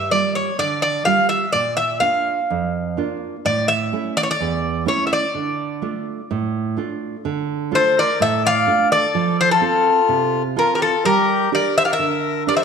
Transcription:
0.11 0.49 G3 soft
0.11 0.50 A#3 soft
0.11 0.50 F4 soft
0.11 0.35 D5 medium
0.35 0.57 C#5 medium
0.59 1.05 D3 medium
0.59 0.81 D5 medium
0.82 1.05 D5 medium
1.05 1.44 G3 soft
1.05 1.45 A#3 soft
1.05 1.45 F4 medium
1.05 1.28 F5 medium
1.29 1.52 E5 medium
1.53 2.00 A#2 medium
1.53 1.75 D5 medium
1.77 1.99 E5 medium
2.00 2.39 A#3 soft
2.00 2.40 D4 soft
2.00 2.40 F4 soft
2.00 3.16 F5 medium
2.50 2.96 F2 medium
2.97 3.35 A#3 soft
2.97 3.36 D4 soft
2.97 3.35 F4 soft
3.45 3.91 A2 medium
3.45 3.68 D5 medium
3.68 4.12 E5 medium
3.92 4.31 A3 soft
3.92 4.30 C#4 soft
3.92 4.31 E4 soft
4.17 4.23 D5 medium
4.23 4.30 C#5 medium
4.31 4.84 D5 medium
4.40 4.86 E2 medium
4.86 5.24 A3 soft
4.86 5.25 C#4 soft
4.86 5.25 E4 soft
4.86 5.03 C#5 medium
5.07 5.12 E5 medium
5.13 6.74 D5 medium
5.35 5.81 D3 medium
5.82 6.20 A3 soft
5.82 6.20 D4 soft
5.82 6.20 F4 soft
6.31 6.76 A2 medium
6.77 7.15 A3 soft
6.77 7.15 D4 soft
6.77 7.16 F4 soft
7.25 7.71 D3 medium
7.71 8.10 A3 soft
7.71 8.10 D4 soft
7.71 8.10 F4 medium
7.71 7.95 A4 medium
7.71 7.98 C5 medium
7.97 8.19 A#4 medium
7.97 8.20 D5 medium
8.20 8.66 A2 medium
8.20 8.43 A4 medium
8.20 8.43 E5 loud
8.44 8.88 D5 medium
8.44 8.90 F5 loud
8.67 9.05 A3 soft
8.67 9.06 D4 soft
8.67 9.06 F4 medium
8.92 9.37 A4 medium
8.92 9.41 D5 medium
9.15 9.61 F3 medium
9.41 9.51 A4 medium
9.41 9.51 C5 medium
9.51 10.43 F4 medium
9.51 10.42 A4 medium
9.61 10.00 C4 soft
9.61 10.00 F4 soft
9.61 10.00 A4 soft
10.09 10.56 C3 medium
10.56 10.95 C4 soft
10.56 10.95 F4 soft
10.56 10.75 F4 medium
10.56 10.95 A4 soft
10.56 10.74 A#4 medium
10.75 10.82 G4 medium
10.75 10.81 A#4 medium
10.82 11.04 F4 medium
10.82 11.04 A4 medium
11.05 11.51 G3 medium
11.05 11.50 G4 medium
11.05 11.50 A#4 medium
11.52 11.90 D4 soft
11.52 11.90 G4 soft
11.52 11.91 A#4 medium
11.52 11.76 A#4 medium
11.52 11.76 D5 medium
11.77 11.83 C5 medium
11.77 11.84 E5 loud
11.85 11.91 D5 medium
11.85 11.91 F5 medium
11.90 12.43 A#4 medium
11.90 12.45 E5 medium
11.99 12.46 D3 medium
12.47 12.64 D4 soft
12.47 12.64 G4 soft
12.47 12.54 A#4 medium
12.47 12.64 A#4 soft
12.47 12.55 D5 medium
12.54 12.61 C5 medium
12.54 12.63 E5 medium
12.61 12.64 A#4 medium

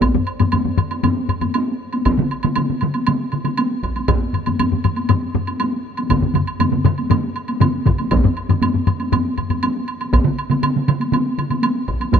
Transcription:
0.01 taiko medium
0.01 taiko high medium
0.01 high woodblock soft
0.15 taiko low-mid medium
0.27 high woodblock soft
0.40 taiko low-mid medium
0.40 taiko high medium
0.40 high woodblock soft
0.52 taiko low-mid medium
0.52 taiko high medium
0.52 high woodblock medium
0.65 taiko low-mid medium
0.77 taiko low-mid medium
0.77 high woodblock soft
0.91 taiko high medium
0.91 high woodblock soft
1.03 taiko low-mid loud
1.03 taiko high medium
1.03 high woodblock soft
1.29 taiko low-mid medium
1.29 high woodblock soft
1.41 taiko low-mid medium
1.41 taiko high medium
1.41 high woodblock soft
1.54 taiko high medium
1.54 high woodblock medium
1.93 taiko high medium
1.93 high woodblock soft
2.05 taiko medium
2.05 taiko high medium
2.05 high woodblock soft
2.17 taiko mid medium
2.31 high woodblock soft
2.43 taiko mid medium
2.43 taiko high medium
2.43 high woodblock soft
2.56 taiko mid medium
2.56 taiko high medium
2.56 high woodblock medium
2.70 taiko mid medium
2.81 taiko mid medium
2.81 high woodblock soft
2.94 taiko high soft
2.94 high woodblock soft
3.07 taiko mid medium
3.07 taiko high medium
3.07 high woodblock medium
3.32 taiko mid medium
3.32 high woodblock soft
3.45 taiko mid medium
3.45 taiko high soft
3.45 high woodblock soft
3.58 taiko high medium
3.58 high woodblock medium
3.84 taiko medium
3.84 high woodblock soft
3.96 taiko high soft
3.96 high woodblock soft
4.08 taiko loud
4.08 taiko low-mid medium
4.08 taiko high medium
4.08 high woodblock medium
4.34 taiko low-mid medium
4.34 high woodblock soft
4.46 taiko low-mid medium
4.46 taiko high medium
4.46 high woodblock soft
4.59 taiko low-mid medium
4.59 taiko high medium
4.59 high woodblock medium
4.72 taiko low-mid medium
4.84 taiko low-mid medium
4.84 high woodblock soft
4.96 taiko high soft
4.96 high woodblock soft
5.09 taiko low-mid loud
5.09 taiko high medium
5.09 high woodblock soft
5.35 taiko low-mid loud
5.47 taiko high soft
5.47 high woodblock soft
5.60 taiko high medium
5.60 high woodblock medium
5.97 taiko high medium
5.97 high woodblock soft
6.09 taiko medium
6.09 taiko low-mid medium
6.09 taiko mid medium
6.09 taiko high medium
6.09 high woodblock medium
6.22 taiko low-mid medium
6.22 taiko mid medium
6.34 taiko low-mid medium
6.34 taiko mid medium
6.34 high woodblock soft
6.47 high woodblock soft
6.59 taiko low-mid medium
6.59 taiko mid medium
6.59 taiko high medium
6.59 high woodblock medium
6.72 taiko low-mid medium
6.72 taiko mid medium
6.85 taiko low-mid medium
6.85 taiko mid loud
6.85 high woodblock soft
6.98 taiko high soft
6.98 high woodblock soft
7.10 taiko low-mid loud
7.10 taiko mid medium
7.10 taiko high medium
7.10 high woodblock soft
7.36 high woodblock soft
7.48 taiko high medium
7.48 high woodblock soft
7.60 taiko low-mid medium
7.60 taiko mid medium
7.60 taiko high medium
7.60 high woodblock soft
7.86 taiko medium
7.86 taiko low-mid medium
7.86 taiko mid loud
7.86 high woodblock soft
7.98 taiko high medium
7.98 high woodblock soft
8.11 taiko loud
8.11 taiko high medium
8.11 high woodblock soft
8.24 taiko low-mid medium
8.37 high woodblock soft
8.49 taiko low-mid medium
8.49 taiko high medium
8.49 high woodblock soft
8.62 taiko low-mid medium
8.62 taiko high medium
8.62 high woodblock medium
8.74 taiko low-mid medium
8.87 taiko low-mid medium
8.87 high woodblock soft
9.00 taiko high medium
9.00 high woodblock soft
9.12 taiko low-mid loud
9.12 taiko high medium
9.12 high woodblock soft
9.38 taiko low-mid medium
9.38 high woodblock soft
9.50 taiko low-mid medium
9.50 taiko high soft
9.50 high woodblock soft
9.63 taiko high medium
9.63 high woodblock medium
9.88 high woodblock soft
10.01 taiko high soft
10.01 high woodblock soft
10.13 taiko medium
10.13 taiko high medium
10.13 high woodblock medium
10.25 taiko mid medium
10.39 high woodblock soft
10.50 taiko mid medium
10.50 taiko high medium
10.50 high woodblock soft
10.63 taiko mid medium
10.63 taiko high medium
10.63 high woodblock medium
10.76 taiko mid medium
10.88 taiko mid loud
10.88 high woodblock soft
11.00 taiko high soft
11.00 high woodblock soft
11.12 taiko mid medium
11.12 taiko high medium
11.12 high woodblock soft
11.38 taiko mid medium
11.38 high woodblock soft
11.50 taiko mid medium
11.50 taiko high soft
11.50 high woodblock soft
11.63 taiko high medium
11.63 high woodblock medium
11.88 taiko medium
11.88 high woodblock soft
12.00 taiko high soft
12.00 high woodblock soft
12.13 taiko medium
12.13 taiko low-mid medium
12.13 taiko high medium
12.13 high woodblock medium

